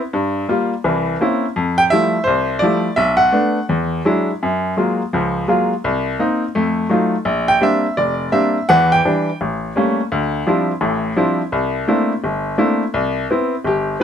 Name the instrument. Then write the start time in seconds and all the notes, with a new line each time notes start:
upright piano
0.13 G2
0.49 G3 A#3 F4
0.84 C2 E3
1.21 A#3 C4 C#4 E4
1.56 F2
1.78 G5
1.90 F3 G3 A3 E4 E5
2.24 C2 C5
2.59 F3 G3 D5
2.63 A3 E4
2.96 B1 E5
3.17 F#5
3.32 A3 B3 D4
3.69 E2
4.05 F#3 G#3 D4 E4
4.43 F#2
4.77 F#3 G#3 A#3 F4
5.13 C#2 F3
5.48 F#3 G#3 A#3 F4
5.84 C2
6.19 A#3 C4 D#4
6.55 F2 A3
6.89 F#3 A3 D#4 F4
7.25 A#1
7.48 G5
7.61 G3 A#3 C4 D4 E5
7.97 F1 D5
8.32 G3 A#3 C4 D4 E5
8.69 E2 E3 F#5
8.92 G5
9.05 E3 G3 D4
9.41 A1
9.76 G3 A3 A#3 C#4
10.12 D2
10.47 F3 G3 C4 D4 E4
10.81 A1 A2
11.16 F3 G3 C4 D4 E4
11.52 C2
11.88 A3 A#3 C4 D4 E4
12.24 G1
12.58 A3 A#3 C4 D4 E4
12.94 C2
13.30 B3 C4 E4
13.65 G1 G4
14.00 B3